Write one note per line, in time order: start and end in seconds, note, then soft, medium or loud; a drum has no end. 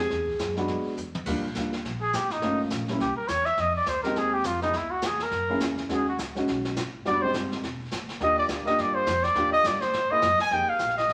0.00 0.93 G#4 medium
0.10 0.39 E2 medium
0.10 brush sweep soft
0.10 snare soft
0.28 kick medium
0.39 0.68 F#2 medium
0.39 snare medium
0.39 hi-hat pedal medium
0.56 0.95 G#3 medium
0.56 0.95 B3 medium
0.56 0.96 D4 medium
0.56 0.96 F#4 medium
0.56 snare soft
0.68 0.97 G#2 medium
0.68 brush sweep soft
0.68 snare soft
0.97 1.26 E2 medium
0.97 hi-hat pedal medium
1.15 mid tom medium
1.26 1.36 D#2 medium
1.26 1.42 G3 medium
1.26 1.42 A#3 medium
1.26 1.43 D4 medium
1.26 1.43 F4 medium
1.26 brush sweep soft
1.26 kick medium
1.26 snare soft
1.26 crash medium
1.36 1.44 D2 soft
1.45 1.54 A#1 medium
1.55 1.84 D2 medium
1.55 1.71 G3 soft
1.55 1.72 A#3 soft
1.55 1.72 D4 soft
1.55 1.72 F4 medium
1.55 snare medium
1.55 hi-hat pedal medium
1.73 snare soft
1.85 2.13 A#1 medium
1.85 brush sweep soft
1.85 snare soft
2.01 2.17 G#4 medium
2.13 2.41 G#1 medium
2.13 2.33 G4 medium
2.13 snare medium
2.13 hi-hat pedal medium
2.30 2.60 D#4 medium
2.30 snare soft
2.42 2.70 G1 medium
2.42 2.85 A3 medium
2.42 2.85 A#3 medium
2.42 2.85 C#4 soft
2.42 2.85 F4 medium
2.42 brush sweep soft
2.42 snare soft
2.70 2.99 A#1 medium
2.70 snare medium
2.70 hi-hat pedal medium
2.88 2.99 G3 medium
2.88 2.99 A#3 medium
2.88 3.00 C#4 soft
2.88 3.00 E4 medium
2.88 snare soft
3.00 3.16 C2 medium
3.00 3.16 G4 medium
3.00 brush sweep soft
3.00 snare soft
3.16 3.29 A#4 medium
3.16 muted upright bass stroke soft
3.28 3.57 E2 medium
3.28 3.47 C#5 medium
3.28 snare medium
3.28 hi-hat pedal medium
3.46 3.62 E5 loud
3.46 snare soft
3.57 3.85 F2 medium
3.57 3.75 D#5 medium
3.57 brush sweep medium
3.57 snare soft
3.76 3.90 D5 medium
3.86 4.14 D2 medium
3.86 4.02 C5 medium
3.86 snare medium
3.86 hi-hat pedal medium
4.03 4.43 G#3 medium
4.03 4.43 C4 medium
4.03 4.43 D#4 medium
4.03 4.43 G4 medium
4.03 4.19 A#4 medium
4.03 snare soft
4.15 4.43 D#2 medium
4.15 4.35 G#4 medium
4.15 brush sweep soft
4.15 snare soft
4.33 4.48 G4 medium
4.43 4.73 F2 medium
4.43 4.61 F4 medium
4.43 snare medium
4.43 hi-hat pedal medium
4.62 4.72 B3 medium
4.62 4.78 D#4 medium
4.62 4.73 D#4 medium
4.62 4.73 E4 soft
4.62 4.73 G#4 medium
4.62 snare soft
4.73 5.01 C#2 medium
4.73 4.92 E4 medium
4.73 brush sweep soft
4.73 snare soft
4.91 5.08 F#4 medium
5.02 5.30 E2 medium
5.02 snare medium
5.02 hi-hat pedal medium
5.06 5.24 G#4 medium
5.20 5.62 A#4 loud
5.20 snare soft
5.31 5.59 F#2 medium
5.31 brush sweep soft
5.31 snare soft
5.49 5.87 A#3 medium
5.49 5.88 C#4 medium
5.49 5.88 E4 medium
5.49 5.88 G#4 medium
5.60 5.88 E2 medium
5.60 snare medium
5.60 hi-hat pedal medium
5.77 snare soft
5.89 6.17 D#2 medium
5.89 6.05 G#3 medium
5.89 6.05 C#4 medium
5.89 6.05 D#4 medium
5.89 6.06 F#4 medium
5.89 brush sweep medium
5.89 snare soft
5.93 6.07 G#4 medium
6.08 6.18 F#4 medium
6.18 6.46 C#2 medium
6.18 snare medium
6.18 hi-hat pedal medium
6.35 6.73 G#3 medium
6.35 6.74 C#4 medium
6.35 6.74 D#4 medium
6.35 6.75 F#4 medium
6.35 snare soft
6.47 6.75 B1 medium
6.47 brush sweep soft
6.47 snare soft
6.65 snare soft
6.76 7.04 G#1 medium
6.76 snare medium
6.76 hi-hat pedal medium
7.05 7.33 F1 medium
7.05 7.21 G3 medium
7.05 7.21 B3 medium
7.05 7.21 D4 medium
7.05 7.21 F#4 medium
7.05 7.23 D5 medium
7.05 brush sweep soft
7.05 snare soft
7.22 7.63 G#3 medium
7.22 7.63 C4 soft
7.22 7.63 D#4 soft
7.22 7.64 G4 medium
7.22 7.34 C5 medium
7.34 7.62 G1 medium
7.34 snare medium
7.34 hi-hat pedal medium
7.52 snare soft
7.63 7.91 E1 medium
7.63 brush sweep soft
7.63 snare soft
7.91 8.20 G#1 medium
7.91 snare medium
7.91 hi-hat pedal medium
8.09 snare soft
8.20 8.48 D#2 medium
8.20 8.63 A#3 medium
8.20 8.63 D4 medium
8.20 8.63 F4 medium
8.20 8.64 G4 medium
8.20 8.38 D#5 loud
8.20 brush sweep medium
8.20 snare soft
8.38 8.45 D5 medium
8.48 8.77 D2 medium
8.48 snare medium
8.48 hi-hat pedal medium
8.65 9.04 A#3 medium
8.65 9.05 D4 medium
8.65 9.05 F4 medium
8.65 9.05 G4 medium
8.65 8.82 D#5 medium
8.65 snare soft
8.78 9.06 G2 medium
8.78 8.96 D5 medium
8.78 brush sweep soft
8.78 snare soft
8.95 9.25 C5 medium
9.06 9.34 F2 loud
9.06 snare medium
9.06 hi-hat pedal medium
9.23 9.52 D5 medium
9.23 snare soft
9.34 9.63 D#2 medium
9.34 9.78 A#3 medium
9.34 9.78 D4 medium
9.34 9.79 F4 medium
9.34 9.79 G4 medium
9.34 brush sweep soft
9.34 snare soft
9.52 9.68 D#5 loud
9.63 9.80 G2 medium
9.63 9.82 D5 medium
9.63 snare medium
9.63 hi-hat pedal medium
9.81 10.12 C5 medium
9.81 muted upright bass stroke soft
9.81 snare soft
9.92 10.09 G#2 medium
9.92 brush sweep medium
9.92 snare soft
10.10 10.21 A#3 medium
10.10 10.21 D#4 medium
10.10 10.22 E4 medium
10.10 10.22 G#4 medium
10.10 10.40 D#5 loud
10.10 muted upright bass stroke soft
10.21 10.38 F#2 medium
10.21 snare medium
10.21 hi-hat pedal medium
10.39 10.55 G#5 loud
10.39 muted upright bass stroke soft
10.39 snare soft
10.51 10.67 F2 medium
10.51 11.13 A#3 soft
10.51 11.13 D#4 soft
10.51 11.13 G4 soft
10.51 11.13 G#4 medium
10.51 10.71 G5 medium
10.51 brush sweep soft
10.51 snare soft
10.69 10.97 F5 medium
10.69 muted upright bass stroke soft
10.79 11.08 A#1 medium
10.79 snare medium
10.79 hi-hat pedal medium
10.89 snare soft
10.98 11.13 D#5 medium
10.98 snare soft
11.00 snare soft
11.08 11.13 G#1 medium
11.08 brush sweep soft
11.08 snare soft